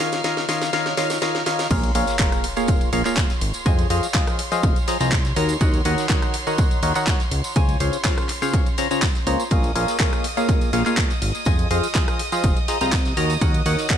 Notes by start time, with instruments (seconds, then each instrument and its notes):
Already playing: violin section F5 F6
0.00 analog synth bass C#2, synth stab D#3 F4 A#4 C#5 D#5 F5, snare, open hi-hat, ride
0.12 snare, closed hi-hat, tambourine
0.24 synth stab D#3 F4 A#4 C#5 D#5 F5, snare, closed hi-hat, ride, tambourine
0.37 snare, closed hi-hat, tambourine
0.49 synth stab D#3 F4 A#4 C#5 D#5 F5, snare, open hi-hat, ride
0.62 snare, closed hi-hat, tambourine
0.73 synth stab D#3 F4 A#4 C#5 D#5 F5, snare, closed hi-hat, ride, tambourine
0.86 snare, closed hi-hat, tambourine
0.97 synth stab D#3 F4 A#4 C#5 D#5 F5, snare, open hi-hat, ride
1.10 snare, closed hi-hat, ride, tambourine
1.22 synth stab D#3 F4 A#4 C#5 D#5 F5, snare, closed hi-hat, ride, tambourine
1.35 snare, closed hi-hat, tambourine
1.46 analog synth bass C#2, synth stab D#3 F4 A#4 C#5 D#5 F5, snare, open hi-hat, ride
1.59 snare, closed hi-hat, tambourine
1.71 analog synth bass A#1, synth stab A#3 F4 G#4 A#4 C#5 F5, violin section C#5 C6, kick, closed hi-hat, crash, ride, tambourine, sub drop
1.83 closed hi-hat, tambourine
1.95 analog synth bass A#1, synth stab A#3 F4 G#4 A#4 C#5 F5, open hi-hat, ride
2.07 snare, closed hi-hat, tambourine
2.19 synth stab A#3 F4 G#4 A#4 C#5 F5, kick, snare, clap, closed hi-hat, tambourine
2.32 cross-stick, closed hi-hat, tambourine
2.44 open hi-hat, ride
2.56 synth stab A#3 F4 G#4 A#4 C#5 F5, closed hi-hat, ride, tambourine
2.68 kick, closed hi-hat, ride, tambourine
2.81 closed hi-hat, tambourine
2.93 analog synth bass A#1, synth stab A#3 F4 G#4 A#4 C#5 F5, open hi-hat, ride
3.05 synth stab A#3 F4 G#4 A#4 C#5 F5, clap, closed hi-hat, tambourine
3.16 kick, snare, clap, closed hi-hat, tambourine
3.30 snare, closed hi-hat, tambourine
3.41 analog synth bass G#1, open hi-hat, ride
3.54 closed hi-hat, tambourine
3.66 analog synth bass F2, synth stab F3 F4 G#4 C5 D#5 G#5, kick, closed hi-hat, ride, tambourine
3.79 closed hi-hat, tambourine
3.90 analog synth bass F2, synth stab F3 F4 G#4 C5 D#5 F5, open hi-hat, ride
4.03 closed hi-hat, tambourine
4.14 synth stab F3 F4 G#4 C5 D#5 F5, kick, snare, clap, closed hi-hat, ride
4.27 cross-stick, closed hi-hat, tambourine
4.39 open hi-hat, ride
4.51 synth stab F3 F4 G#4 C5 D#5 F5, snare, closed hi-hat, tambourine
4.63 analog synth bass F1, kick, closed hi-hat, ride, tambourine
4.76 closed hi-hat, tambourine
4.88 synth stab F3 F4 G#4 C5 D#5 A#5, snare, open hi-hat, ride
5.00 analog synth bass C2, synth stab F3 F4 G#4 C5 D#5 A#5, snare, closed hi-hat, ride, tambourine
5.11 kick, snare, clap, closed hi-hat, ride, tambourine
5.25 snare, closed hi-hat, tambourine
5.36 analog synth bass D#2, synth stab D#3 F#4 A#4 C#5 D#5 A#5, open hi-hat, ride
5.49 closed hi-hat, tambourine
5.61 analog synth bass D#2, synth stab D#3 F#4 A#4 C#5 D#5 F#5, kick, closed hi-hat, ride, tambourine
5.74 closed hi-hat, tambourine
5.85 analog synth bass D#2, synth stab D#3 F#4 A#4 C#5 D#5 F#5, open hi-hat, ride
5.98 snare, closed hi-hat, tambourine
6.09 synth stab D#3 F#4 A#4 C#5 D#5 F#5, kick, snare, clap, closed hi-hat, ride, tambourine
6.22 cross-stick, closed hi-hat, tambourine
6.33 open hi-hat, ride
6.47 synth stab D#3 F#4 A#4 C#5 D#5 F#5, closed hi-hat, ride, tambourine
6.58 kick, closed hi-hat, ride, tambourine
6.71 closed hi-hat, tambourine
6.83 analog synth bass D#2, synth stab D#3 F#4 A#4 C#5 D#5 F#5, open hi-hat, ride
6.95 synth stab D#3 F#4 A#4 C#5 D#5 F#5, clap, closed hi-hat, tambourine
7.07 kick, snare, clap, closed hi-hat, ride, tambourine
7.20 snare, closed hi-hat, tambourine
7.31 analog synth bass C#2, open hi-hat, ride
7.44 closed hi-hat, tambourine
7.56 analog synth bass C#2, synth stab C#3 F4 G#4 C5 C#5 G#5, kick, closed hi-hat, ride, tambourine
7.69 closed hi-hat, tambourine
7.80 analog synth bass C#2, synth stab C#3 F4 G#4 C5 C#5 F5, open hi-hat, ride
7.93 closed hi-hat, tambourine
8.04 synth stab C#3 F4 G#4 C5 C#5 F5, kick, snare, clap, closed hi-hat, ride, tambourine
8.18 cross-stick, closed hi-hat, tambourine
8.29 clap, open hi-hat, ride
8.42 synth stab C#3 F4 G#4 C5 C#5 F5, snare, closed hi-hat, tambourine
8.54 kick, closed hi-hat, ride
8.66 closed hi-hat, tambourine
8.78 synth stab C#3 F4 G#4 C5 C#5 A#5, snare, open hi-hat, ride
8.91 synth stab C#3 F4 G#4 C5 C#5 A#5, closed hi-hat, ride, tambourine
9.02 kick, snare, clap, closed hi-hat, ride, tambourine
9.15 snare, closed hi-hat, tambourine
9.27 analog synth bass C#2, synth stab A#3 F4 G#4 C5 C#5 A#5, open hi-hat, ride
9.40 closed hi-hat, tambourine
9.51 analog synth bass A#1, synth stab A#3 F4 G#4 A#4 C#5 F5, violin section D#5 D#6, kick, closed hi-hat, ride, tambourine
9.63 closed hi-hat, tambourine
9.75 analog synth bass A#1, synth stab A#3 F4 G#4 A#4 C#5 F5, open hi-hat, ride
9.88 snare, closed hi-hat, tambourine
9.99 synth stab A#3 F4 G#4 A#4 C#5 F5, kick, snare, clap, closed hi-hat, ride, tambourine
10.13 cross-stick, closed hi-hat, tambourine
10.24 open hi-hat, ride
10.37 synth stab A#3 F4 G#4 A#4 C#5 F5, closed hi-hat, ride, tambourine
10.48 kick, closed hi-hat, ride, tambourine
10.61 closed hi-hat, tambourine
10.73 analog synth bass A#1, synth stab A#3 F4 G#4 A#4 C#5 F5, open hi-hat, ride
10.86 synth stab A#3 F4 G#4 A#4 C#5 F5, clap, closed hi-hat, tambourine
10.97 kick, snare, clap, closed hi-hat, ride, tambourine
11.10 snare, closed hi-hat, tambourine
11.22 analog synth bass G#1, open hi-hat, ride
11.35 closed hi-hat, tambourine
11.45 analog synth bass F2, synth stab F3 F4 G#4 C5 D#5 G#5, kick, closed hi-hat, ride, tambourine
11.59 closed hi-hat, tambourine
11.71 analog synth bass F2, synth stab F3 F4 G#4 C5 D#5 F5, open hi-hat, ride
11.83 closed hi-hat, tambourine
11.94 synth stab F3 F4 G#4 C5 D#5 F5, kick, snare, clap, closed hi-hat, ride, tambourine
12.08 cross-stick, closed hi-hat, tambourine
12.19 open hi-hat, ride
12.32 synth stab F3 F4 G#4 C5 D#5 F5, snare, closed hi-hat, tambourine
12.43 analog synth bass F1, kick, closed hi-hat, ride, tambourine
12.56 closed hi-hat, tambourine
12.68 synth stab F3 F4 G#4 C5 D#5 A#5, snare, open hi-hat, ride
12.81 analog synth bass C2, synth stab F3 F4 G#4 C5 D#5 A#5, snare, closed hi-hat, ride, tambourine
12.92 kick, snare, clap, closed hi-hat, ride, tambourine
13.05 snare, closed hi-hat, tambourine
13.17 analog synth bass D#2, synth stab D#3 F#4 A#4 C#5 D#5 A#5, open hi-hat, ride
13.30 closed hi-hat, tambourine
13.41 analog synth bass D#2, synth stab D#3 F#4 A#4 C#5 D#5 F#5, kick, closed hi-hat, ride, tambourine
13.54 closed hi-hat, tambourine
13.66 analog synth bass D#2, synth stab D#3 F#4 A#4 C#5 D#5 F#5, open hi-hat, ride
13.79 snare, closed hi-hat, tambourine
13.90 synth stab D#3 F#4 A#4 C#5 D#5 F#5, kick, snare, clap, closed hi-hat, ride